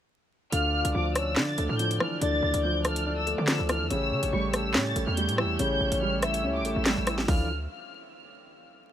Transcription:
0.52 D2 D3 D4 D5 F5 F6, closed hi-hat
0.85 C#2, closed hi-hat
0.95 D2 F3 D6
1.15 C#5 E6, cross-stick, closed hi-hat
1.36 D3 D4, snare, clap
1.48 A6
1.58 D2 A3, closed hi-hat
1.69 A2 F6
1.79 F3 G6, closed hi-hat
1.91 closed hi-hat
2.00 E3 F6, cross-stick
2.21 D2 D3 D5 A6, closed hi-hat
2.43 D2
2.54 D2, closed hi-hat
2.64 F3 G6
2.85 A4 F6, cross-stick, closed hi-hat
2.96 closed hi-hat
3.06 D4
3.17 E6
3.27 A3, closed hi-hat
3.37 D3 D6
3.48 F3 E6, snare, clap, closed hi-hat
3.59 D2
3.69 E3 F6, cross-stick, closed hi-hat
3.80 E2
3.90 A1 C#3 A3 G4 C#5 E6, closed hi-hat
4.11 C#3
4.23 A1, closed hi-hat
4.32 A1 G3 C#6
4.53 A4 E6, cross-stick, closed hi-hat
4.74 A2 C#4, snare, clap
4.86 A6
4.96 A1 A3, closed hi-hat
5.07 E2 F6
5.17 G3 G6, closed hi-hat
5.28 A2, closed hi-hat
5.38 E3 E6, cross-stick
5.44 E2
5.59 A1 C#3 C#5 G6, closed hi-hat
5.81 A1
5.92 A1, closed hi-hat
6.02 G3 F6
6.22 E5 E6, cross-stick, closed hi-hat
6.34 closed hi-hat
6.44 C#2 C#4
6.56 D6
6.60 A1
6.65 A3, closed hi-hat
6.76 A1 E6
6.86 G3, snare, clap, closed hi-hat
6.97 A1
7.07 E3, cross-stick, closed hi-hat
7.18 snare
7.28 D2 D3 E3 F3 A3 E4 D5 F5 F6, kick, open hi-hat

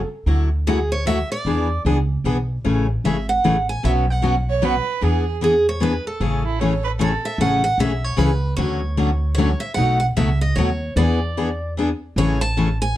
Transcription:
0.26 D2 D3 F#3 A3 E4 F#4
0.67 D3 F#3 A3 E4 F#4 G#4
0.92 C#5
1.06 D3 F#3 A3 E4 F#4 E5
1.32 D5
1.45 E2 E3 B3 D4 G#4
1.85 C#2 E3 B3 D4 G#4
2.24 B1 E3 B3 D4 G#4
2.64 A1 C#3 E3 A3 C#4 G#4
3.04 G#1 C#3 E3 A3 C#4 G#4 E5
3.29 F#5
3.44 A1 C#3 E3 A3 C#4 G#4
3.69 G#5
3.83 B1 B2 F#3 B3 C#4 F#4 E5
4.10 F#5
4.22 B2 F#3 B3 C#4 F#4
4.50 C#5
4.62 B2 F#3 B3 C#4 F#4 B4
5.01 E2 E3 B3 D4 G#4
5.41 E3 B3 D4 G#4
5.69 C#5
5.80 E3 B3 D4 G#4 B4
6.07 A4
6.20 A1 C#3 E3 A3 C#4 G#4
6.45 E4
6.59 C#3 E3 A3 C#4 G#4 C#5
6.84 B4
6.99 C#3 E3 A3 C#4 G#4 A4 C#5
7.25 E5
7.38 A1 C#3 E3 A3 C#4 G#4 F#5
7.64 F#5
7.78 B1 C#3 E3 A3 C#4 G#4 E5
8.04 C#5
8.17 C#2 C#3 E3 A3 C#4 G#4 B4
8.57 D2 D3 F#3 A3 C#4 F#4 C#5
8.97 D3 F#3 A3 C#4 F#4
9.35 D3 F#3 A3 C#5
9.39 C#4 F#4
9.60 E5
9.74 B1 B2 F#3 A3 D#4 F#4 F#5
10.00 F#5
10.16 C#2 B2 F#3 A3 D#4 F#4 E5
10.41 D#5
10.56 D#2 B2 F#3 A3 D#4 F#4 C#5
10.96 E2 E3 B3 D4 G#4 D5
11.37 E3 B3 D4 G#4
11.77 E3 B3 D4 G#4
12.16 A1 C#3 E3 A3 C#4 G#4 C#5
12.41 A5
12.57 C#3 E3 A3 C#4 G#4
12.82 G#5

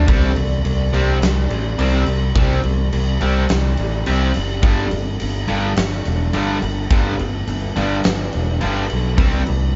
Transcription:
0.07 C2 C3 G3 C4 G4 D5, kick, crash
0.36 C2, crash
0.65 C2, crash
0.93 C2 C3 G3 C4, crash
1.22 C2, snare, crash
1.50 A1, crash
1.78 C2 C3 G3 C4, crash
2.06 C2, crash
2.35 C2 C3 G3 C4, kick, crash
2.63 C2, crash
2.92 C2, crash
3.21 C2 C3 G3 C4, crash
3.49 C2, snare, crash
3.77 A1, crash
4.06 C2 C3 G3 C4, crash
4.34 F#1, snare, crash
4.62 G1 G2 D3 G3 D4 A4, kick, crash
4.91 G1, crash
5.20 G1, crash
5.48 G1 G2 D3 G3, crash
5.76 G1, snare, crash
6.05 E1, crash
6.33 G1 G2 D3 G3, crash
6.62 G1, crash
6.90 G1 G2 D3 G3 B4, kick, crash
7.19 G1, crash
7.47 G1, crash
7.76 G1 G2 D3 G3, crash
8.04 G1, snare, crash
8.33 E1, crash
8.61 G1 G2 D3 G3, crash
8.90 B1, crash
9.17 C2 C3 G3 C4 G4 D5, kick, crash
9.46 C2, crash

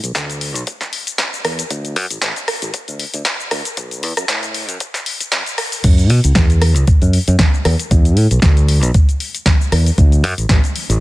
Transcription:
0.03 B1, closed hi-hat, shaker
0.15 D2, kick, snare, closed hi-hat, shaker
0.30 closed hi-hat, shaker
0.41 open hi-hat
0.55 B1, closed hi-hat, shaker
0.67 kick, closed hi-hat, shaker
0.81 snare, closed hi-hat, shaker
0.93 open hi-hat
1.07 closed hi-hat, shaker
1.18 kick, snare, closed hi-hat, shaker
1.34 shaker
1.44 E2, cross-stick, open hi-hat
1.59 closed hi-hat, shaker
1.70 D2, kick, closed hi-hat, shaker
1.85 closed hi-hat, shaker
1.96 F#2, open hi-hat
2.10 A1, closed hi-hat, shaker
2.22 A1, kick, snare, closed hi-hat, shaker
2.36 closed hi-hat, shaker
2.48 cross-stick, open hi-hat
2.62 A1, closed hi-hat, shaker
2.74 kick, closed hi-hat, shaker
2.88 D2, closed hi-hat, shaker
3.00 open hi-hat
3.14 D2, closed hi-hat, shaker
3.25 kick, snare, closed hi-hat, shaker
3.40 shaker
3.51 D2, cross-stick, open hi-hat
3.65 closed hi-hat, shaker
3.77 B1, kick, closed hi-hat, shaker
3.91 closed hi-hat, shaker
4.03 E2, open hi-hat
4.17 F#2, cross-stick, closed hi-hat, shaker
4.28 A2, kick, snare, closed hi-hat, shaker
4.43 closed hi-hat, shaker
4.54 open hi-hat
4.69 F#2, closed hi-hat, shaker
4.80 kick, closed hi-hat, shaker
4.94 snare, closed hi-hat, shaker
5.06 open hi-hat
5.21 muted fingered electric bass stroke, closed hi-hat, shaker
5.32 F#2, kick, snare, closed hi-hat, shaker
5.46 closed hi-hat, shaker
5.58 cross-stick, open hi-hat
5.72 open hi-hat, shaker
5.84 F#2, kick, closed hi-hat, crash, shaker
5.98 closed hi-hat, shaker
6.10 B2, open hi-hat
6.24 C#2, closed hi-hat, shaker
6.35 E2, kick, snare, closed hi-hat, shaker
6.50 closed hi-hat, shaker
6.62 cross-stick, open hi-hat
6.76 C#2, closed hi-hat, shaker
6.87 muted fingered electric bass stroke, kick, closed hi-hat, shaker
7.02 F#2, closed hi-hat, shaker
7.13 open hi-hat
7.28 F#2, closed hi-hat, shaker
7.39 kick, snare, closed hi-hat, shaker
7.54 shaker
7.65 E2, cross-stick, open hi-hat
7.79 closed hi-hat, shaker
7.91 E2, kick, closed hi-hat, shaker
8.05 closed hi-hat, shaker
8.17 A2, open hi-hat
8.31 B1, closed hi-hat, shaker
8.42 D2, kick, snare, closed hi-hat, shaker
8.57 closed hi-hat, shaker
8.69 open hi-hat
8.83 B1, closed hi-hat, shaker
8.94 kick, closed hi-hat, shaker
9.09 closed hi-hat, shaker
9.20 open hi-hat
9.35 closed hi-hat, shaker
9.46 kick, snare, closed hi-hat, shaker
9.61 shaker
9.72 E2, cross-stick, open hi-hat
9.86 open hi-hat, shaker
9.98 D2, kick, closed hi-hat, shaker
10.12 closed hi-hat, shaker
10.23 F#2, open hi-hat
10.38 A1, closed hi-hat, shaker
10.49 A1, kick, snare, closed hi-hat, shaker
10.64 closed hi-hat, shaker
10.76 open hi-hat
10.89 A1, closed hi-hat, shaker

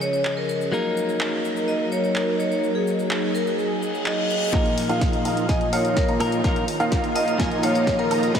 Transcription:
Already playing: C#3 F3 G#3 C#4 F4 G#4 A#4
0.01 C#5, shaker
0.13 C#5, shaker
0.25 clap, shaker
0.37 A#4
0.49 A#4, shaker
0.61 shaker
0.72 F#3 A#3 D#4 A#4, shaker
0.97 shaker
1.09 shaker
1.21 clap, shaker
1.45 shaker
1.56 shaker
1.68 D#5, shaker
1.92 C#5, shaker
2.04 C#5, shaker
2.16 A#4, clap, shaker
2.40 C#5, shaker
2.51 C#5, shaker
2.63 G#4, shaker
2.75 G#4
2.87 shaker
2.99 shaker
3.11 clap, shaker
3.35 A#4, shaker
3.47 shaker
3.58 reverse cymbal, shaker
3.83 shaker
3.94 shaker
4.06 D#5, clap, shaker
4.18 D#5
4.30 shaker
4.42 D#5, shaker
4.53 A#1 A#2 D#3 F3 A#3 D#4 F4 A#4 D#5 F5, kick, snare, closed hi-hat, riser, shaker
4.66 closed hi-hat
4.78 open hi-hat, shaker
4.89 A#1 A#3 D#4 F4 D#5 F5, closed hi-hat, shaker
5.01 kick, snare, closed hi-hat, shaker
5.13 closed hi-hat
5.25 A#1 A#3 D#4 F4 D#5 F5, open hi-hat, shaker
5.37 closed hi-hat, shaker
5.49 A#1 A#3 D#4 F4 D#5 G#5, kick, snare, closed hi-hat, shaker
5.61 closed hi-hat
5.73 A#1 A#3 D#4 F4 C#5 D#5 F5, open hi-hat, shaker
5.85 C#5, closed hi-hat, shaker
5.96 A#4, kick, snare, closed hi-hat, shaker
6.08 A#1 A#3 D#4 F4 D#5 A#5, closed hi-hat
6.20 A#2 F3 A#3 D#4 A#4, open hi-hat, high woodblock, shaker
6.32 closed hi-hat, shaker
6.43 A#1 A#2 F3 A#3 D#4 F4 A#4 F5, kick, snare, closed hi-hat, shaker
6.56 closed hi-hat
6.68 open hi-hat, shaker
6.80 A#1 A#3 D#4 F4 D#5 F5, closed hi-hat, shaker
6.92 kick, snare, closed hi-hat, shaker
7.04 closed hi-hat
7.16 A#1 A#3 D#4 F4 D#5 F5, open hi-hat, shaker
7.28 closed hi-hat, shaker
7.38 A#1 A#2 F3 A#3 D#4 A#4 G#5, kick, snare, closed hi-hat, shaker
7.51 closed hi-hat
7.63 A#1 A#3 D#4 F4 C#5 D#5 F5, open hi-hat, shaker
7.75 C#5, closed hi-hat, shaker
7.87 kick, snare, closed hi-hat, shaker
7.99 A#1 A#3 D#4 F4 A#4 D#5 A#5, closed hi-hat
8.11 A#4, open hi-hat, high woodblock, shaker
8.23 closed hi-hat, shaker
8.34 G#1 G#2 G#3 B3 D#4 B4 D#5, kick, snare, closed hi-hat, shaker

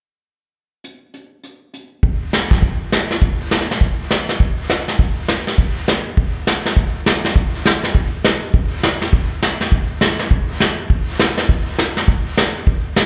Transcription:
0.84 closed hi-hat
1.14 closed hi-hat
1.44 closed hi-hat
1.74 closed hi-hat
2.03 brush sweep, kick
2.33 snare, hi-hat pedal
2.51 kick, snare
2.62 brush sweep, kick
2.92 snare, hi-hat pedal
3.11 snare
3.22 brush sweep, kick
3.51 snare, hi-hat pedal
3.61 snare
3.71 snare
3.81 brush sweep, kick
4.11 snare, hi-hat pedal
4.29 snare
4.40 brush sweep, kick
4.70 snare, hi-hat pedal
4.88 snare
4.99 brush sweep, kick
5.28 snare, hi-hat pedal
5.47 snare
5.58 brush sweep, kick
5.88 snare, hi-hat pedal
6.17 brush sweep, kick
6.47 snare, hi-hat pedal
6.66 snare
6.77 brush sweep, kick
7.06 snare, hi-hat pedal
7.25 snare
7.36 brush sweep, kick
7.66 snare, hi-hat pedal
7.83 snare
7.95 brush sweep, kick
8.24 snare, hi-hat pedal
8.54 brush sweep, kick
8.83 snare, hi-hat pedal
9.02 snare
9.13 brush sweep, kick
9.43 snare, hi-hat pedal
9.61 snare
9.72 brush sweep, kick
10.01 snare, hi-hat pedal
10.19 snare
10.31 brush sweep, kick
10.60 snare, hi-hat pedal
10.90 brush sweep, kick
11.19 snare, hi-hat pedal
11.38 snare
11.49 brush sweep, kick
11.79 snare, hi-hat pedal
11.97 snare
12.08 brush sweep, kick
12.37 snare, hi-hat pedal
12.67 brush sweep, kick
12.96 snare, hi-hat pedal

